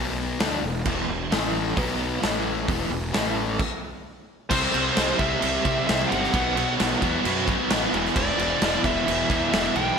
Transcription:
0.00 0.37 B1 loud
0.00 0.38 B2 loud
0.00 0.39 F#3 loud
0.00 0.39 B3 loud
0.40 0.62 D2 medium
0.40 0.62 D3 loud
0.40 0.62 A3 loud
0.40 0.62 D4 loud
0.40 snare loud
0.40 open hi-hat medium
0.63 0.84 E1 medium
0.63 0.81 E2 medium
0.63 0.81 B2 medium
0.85 1.07 E1 medium
0.85 1.08 E2 loud
0.85 1.08 B2 loud
0.85 1.08 E3 medium
0.85 kick loud
0.85 crash medium
1.09 1.30 E1 medium
1.09 1.27 E2 medium
1.09 1.27 B2 medium
1.32 1.74 A1 loud
1.32 1.76 A2 medium
1.32 1.76 E3 loud
1.32 1.77 A3 loud
1.32 snare loud
1.32 open hi-hat medium
1.76 2.19 B1 loud
1.76 2.21 B2 medium
1.76 2.22 F#3 medium
1.76 2.22 B3 loud
1.76 kick loud
1.76 open hi-hat medium
2.22 2.65 A1 medium
2.22 2.67 A2 medium
2.22 2.67 E3 loud
2.22 2.68 A3 loud
2.22 snare loud
2.22 open hi-hat medium
2.66 2.89 E1 medium
2.66 2.89 E2 medium
2.66 2.89 B2 loud
2.66 2.90 E3 loud
2.66 kick loud
2.66 open hi-hat medium
2.90 3.12 E1 medium
2.90 3.09 E2 medium
2.90 3.09 B2 medium
3.12 3.56 A1 medium
3.12 3.58 A2 medium
3.12 3.58 E3 loud
3.12 3.59 A3 loud
3.12 snare loud
3.12 open hi-hat medium
3.59 kick loud
3.59 crash loud
4.50 4.66 C2 medium
4.50 4.72 C3 medium
4.50 4.73 G3 medium
4.50 4.73 C4 loud
4.50 5.21 C5 medium
4.50 kick loud
4.50 crash loud
4.50 crash medium
4.73 4.89 C2 medium
4.73 4.94 C3 medium
4.73 4.95 G3 medium
4.73 4.95 C4 loud
4.73 crash medium
4.96 5.12 C2 medium
4.96 5.17 C3 loud
4.96 5.18 G3 medium
4.96 5.19 C4 loud
4.96 snare loud
4.96 crash medium
5.18 5.34 C2 loud
5.18 5.41 C3 medium
5.18 5.42 G3 loud
5.18 5.42 C4 medium
5.18 5.86 E5 medium
5.18 kick medium
5.18 crash medium
5.42 5.57 C2 loud
5.42 5.63 C3 medium
5.42 5.65 G3 loud
5.42 5.65 C4 loud
5.42 crash medium
5.64 5.87 C3 medium
5.64 5.80 C3 medium
5.64 5.88 G3 medium
5.64 5.88 C4 loud
5.64 kick medium
5.64 crash medium
5.87 6.04 C2 medium
5.87 6.10 C3 medium
5.87 6.11 G3 medium
5.87 6.12 C4 medium
5.87 6.11 E5 loud
5.87 snare loud
5.87 crash medium
6.07 6.73 F#5 loud
6.11 6.26 G1 loud
6.11 6.32 C3 medium
6.11 6.33 G3 medium
6.11 6.33 C4 medium
6.11 crash medium
6.24 snare soft
6.33 6.63 B1 loud
6.33 6.55 B2 loud
6.33 6.55 F#3 medium
6.33 6.57 B3 loud
6.33 kick loud
6.33 crash medium
6.56 6.77 B2 loud
6.56 6.78 F#3 loud
6.56 6.79 B3 medium
6.56 crash medium
6.78 6.94 B1 medium
6.78 7.01 B2 medium
6.78 7.02 F#3 medium
6.78 7.03 B3 medium
6.78 snare loud
6.78 crash medium
7.02 7.17 E2 loud
7.02 7.23 B2 medium
7.02 7.24 F#3 medium
7.02 7.25 B3 medium
7.02 kick medium
7.02 crash medium
7.24 7.55 F#2 loud
7.24 7.47 B2 loud
7.24 7.47 F#3 loud
7.24 7.49 B3 loud
7.24 crash medium
7.48 7.69 B2 medium
7.48 7.70 F#3 medium
7.48 7.71 B3 loud
7.48 kick medium
7.48 crash medium
7.70 7.85 A1 medium
7.70 7.92 B2 loud
7.70 7.92 F#3 loud
7.70 9.99 B3 medium
7.70 snare loud
7.70 crash medium
7.93 8.08 E1 loud
7.93 8.14 E2 loud
7.93 8.15 B2 loud
7.93 8.16 E3 loud
7.93 crash medium
8.06 snare soft
8.16 8.31 E1 loud
8.16 8.37 E2 medium
8.16 8.38 B2 loud
8.16 8.38 E3 loud
8.16 8.81 D5 medium
8.16 kick loud
8.16 crash medium
8.38 8.53 E1 medium
8.38 8.59 E2 medium
8.38 8.60 B2 loud
8.38 8.61 E3 medium
8.38 crash medium
8.61 8.76 E1 medium
8.61 8.83 E2 medium
8.61 8.83 B2 medium
8.61 8.84 E3 loud
8.61 snare loud
8.61 crash medium
8.84 8.99 E1 medium
8.84 9.05 E2 medium
8.84 9.06 B2 medium
8.84 9.06 E3 medium
8.84 9.51 E5 loud
8.84 kick medium
8.84 crash medium
9.07 9.22 E1 loud
9.07 9.28 E2 loud
9.07 9.28 B2 loud
9.07 9.28 E3 loud
9.07 crash medium
9.29 9.51 E2 medium
9.29 9.45 E2 medium
9.29 9.51 B2 medium
9.29 9.52 E3 loud
9.29 kick medium
9.29 crash medium
9.52 9.67 E1 loud
9.52 9.74 E2 medium
9.52 9.74 B2 loud
9.52 9.75 E3 loud
9.52 9.74 E5 loud
9.52 snare loud
9.52 crash medium
9.75 9.90 B1 loud
9.75 9.96 E2 medium
9.75 9.97 B2 medium
9.75 9.97 E3 loud
9.75 9.99 G5 loud
9.75 crash medium

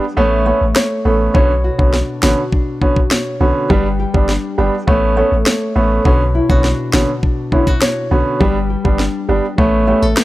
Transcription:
0.00 0.17 G3 medium
0.00 0.23 D4 medium
0.00 0.23 G4 medium
0.00 0.49 B4 medium
0.17 0.52 A1 loud
0.17 0.44 A3 medium
0.17 1.41 A3 medium
0.17 0.44 B3 medium
0.17 0.44 C#4 loud
0.46 0.62 A3 medium
0.46 0.62 B3 medium
0.46 0.62 C#4 medium
0.46 1.04 A4 medium
0.61 0.73 A1 medium
0.76 1.35 C#5 medium
0.76 cross-stick medium
0.76 snare loud
1.05 1.29 A1 loud
1.05 1.32 A3 medium
1.05 1.32 B3 medium
1.05 1.32 C#4 medium
1.05 1.41 A4 medium
1.34 1.70 B1 loud
1.34 3.70 B2 medium
1.34 1.50 D3 medium
1.34 1.50 B3 medium
1.34 1.50 C#4 loud
1.34 3.10 C#5 medium
1.34 kick loud
1.64 2.22 F#4 medium
1.78 2.03 B1 loud
1.78 1.94 D3 medium
1.78 1.94 B3 medium
1.78 1.95 C#4 medium
1.78 kick medium
1.94 2.52 D4 medium
1.94 snare medium
2.22 2.35 A1 loud
2.22 2.38 D3 medium
2.22 2.39 B3 medium
2.22 2.39 C#4 medium
2.22 2.81 F#4 medium
2.22 snare loud
2.52 3.76 D4 medium
2.52 kick medium
2.81 2.97 D3 medium
2.81 2.97 B3 medium
2.81 2.98 C#4 medium
2.81 3.39 F#4 medium
2.81 kick medium
2.96 kick medium
3.11 3.70 C#5 medium
3.11 snare loud
3.40 3.52 B1 medium
3.40 3.68 D3 medium
3.40 3.68 B3 medium
3.40 3.68 C#4 medium
3.40 3.76 F#4 medium
3.70 4.05 G1 loud
3.70 3.86 G3 medium
3.70 4.87 G3 medium
3.70 3.86 B3 medium
3.70 3.86 D4 loud
3.70 5.20 B4 medium
3.70 kick loud
3.99 4.57 G4 medium
4.14 4.38 G1 medium
4.14 4.30 G3 medium
4.14 4.30 B3 medium
4.14 4.30 D4 medium
4.14 kick loud
4.29 4.94 D4 medium
4.29 snare medium
4.58 4.70 G1 medium
4.58 4.74 G3 medium
4.58 4.74 B3 medium
4.58 4.74 D4 medium
4.58 4.94 G4 medium
4.87 5.23 A1 loud
4.87 5.15 A3 medium
4.87 6.11 A3 medium
4.87 5.15 B3 medium
4.87 5.15 C#4 loud
4.87 kick loud
5.17 5.33 A3 medium
5.17 5.33 B3 medium
5.17 5.33 C#4 medium
5.17 5.75 A4 medium
5.32 5.44 A1 medium
5.46 6.06 C#5 medium
5.46 snare loud
5.75 5.99 A1 loud
5.75 6.03 A3 medium
5.75 6.03 B3 medium
5.75 6.03 C#4 medium
5.75 6.11 A4 medium
6.05 6.41 B1 loud
6.05 8.41 B2 medium
6.05 6.21 D3 medium
6.05 6.21 B3 medium
6.05 6.21 C#4 loud
6.05 7.81 C#5 medium
6.05 kick loud
6.35 6.49 E4 medium
6.49 6.73 B1 loud
6.49 6.65 D3 medium
6.49 6.65 B3 medium
6.49 6.65 C#4 medium
6.49 6.92 F#4 medium
6.49 kick loud
6.64 7.23 D4 medium
6.64 snare medium
6.93 7.05 A1 loud
6.93 7.09 D3 medium
6.93 7.09 B3 medium
6.93 7.09 C#4 medium
6.93 7.52 F#4 medium
6.93 snare loud
7.23 8.46 D4 medium
7.23 kick loud
7.52 7.68 D3 medium
7.52 7.68 B3 medium
7.52 7.68 C#4 medium
7.52 7.67 E4 medium
7.52 kick medium
7.67 8.10 F#4 medium
7.67 kick medium
7.82 8.41 C#5 medium
7.82 snare loud
8.11 8.23 B1 medium
8.11 8.38 D3 medium
8.11 8.38 B3 medium
8.11 8.38 C#4 medium
8.11 8.46 F#4 medium
8.40 8.76 G1 loud
8.40 8.56 G3 medium
8.40 9.58 G3 medium
8.40 8.56 B3 medium
8.40 8.56 D4 loud
8.40 10.05 B4 medium
8.40 kick loud
8.70 9.28 G4 medium
8.84 9.08 G1 medium
8.84 9.00 G3 medium
8.84 9.00 B3 medium
8.84 9.01 D4 medium
8.84 kick loud
8.99 9.64 D4 medium
8.99 snare medium
9.29 9.41 G1 medium
9.29 9.44 G3 medium
9.29 9.45 B3 medium
9.29 9.45 D4 medium
9.29 9.64 G4 medium
9.58 9.94 A1 loud
9.58 9.85 A3 medium
9.58 10.24 A3 medium
9.58 9.85 B3 medium
9.58 9.86 C#4 loud
9.58 kick medium
9.87 10.03 A3 medium
9.87 10.03 B3 medium
9.87 10.03 C#4 medium
9.87 10.02 G4 medium
10.02 10.14 A1 medium
10.02 10.24 A4 soft
10.17 10.24 B4 medium
10.17 cross-stick medium
10.17 snare loud

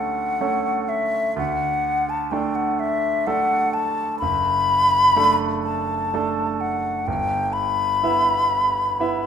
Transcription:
0.00 1.36 D2 medium
0.00 0.36 A3 soft
0.00 0.36 C#4 soft
0.00 0.36 A4 soft
0.00 0.90 F#5 medium
0.41 1.33 A3 soft
0.41 1.33 C#4 soft
0.41 1.33 A4 soft
0.89 1.37 E5 medium
1.36 2.29 D2 medium
1.36 2.11 F#5 medium
2.10 2.33 A5 medium
2.31 3.23 A3 soft
2.31 3.23 D4 soft
2.31 3.23 A4 soft
2.31 2.57 G5 medium
2.55 2.81 F#5 medium
2.80 3.28 E5 medium
3.27 4.17 A3 soft
3.27 4.17 D4 soft
3.27 4.17 A4 medium
3.27 3.75 F#5 medium
3.74 4.18 A5 medium
4.19 5.13 F#1 medium
4.19 5.37 B5 loud
5.16 6.09 A3 soft
5.16 6.09 D4 medium
5.16 6.09 A4 soft
5.63 6.62 A5 medium
6.14 7.04 A3 soft
6.14 7.04 D4 soft
6.14 7.04 A4 soft
6.61 7.08 F#5 medium
7.07 8.00 G1 medium
7.07 7.54 G5 loud
7.53 9.26 B5 loud
8.03 8.95 B3 soft
8.03 8.95 E4 soft
8.03 8.95 E5 medium
9.00 9.26 B3 soft
9.00 9.26 E4 soft
9.00 9.26 E5 soft

